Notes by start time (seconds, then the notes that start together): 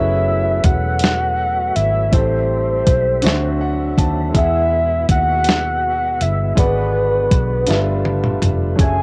Already playing: F#1 F#3 A3 B3 C#4 E4 G#4 A4 E5
0.01 B4
0.64 E1 F#5, kick, closed hi-hat
0.99 closed hi-hat
1.04 snare
1.76 G#1 E5, closed hi-hat
2.11 A1 G3 A3 C4 E4 G4 A4 C5, kick, closed hi-hat
2.87 B1, kick, closed hi-hat
3.22 D2 D3 F#3 C4 D4 F#4 C5 E5, closed hi-hat
3.27 snare
3.61 F#5
3.98 D#2 A5, kick, closed hi-hat
4.31 B2 G#3 B3 E4 G#4, kick, closed hi-hat
4.35 E2 E5 F#5
5.09 D#2 F#5, kick, closed hi-hat
5.44 closed hi-hat
5.49 snare
6.21 G1 E5, closed hi-hat
6.55 G#1 D3 G#3 F#4 G#4 B4 D5 F#5, kick, closed hi-hat
7.31 B1, kick, closed hi-hat
7.66 G1 D3 G3 A3 D4 F4 A4 B4 E5, closed hi-hat
7.71 snare
8.05 high tom
8.24 mid tom
8.42 F1, closed hi-hat, mid tom
8.76 F#1 F#3 C#4 F#4 G#4, kick, closed hi-hat
8.80 A4 E5 G#5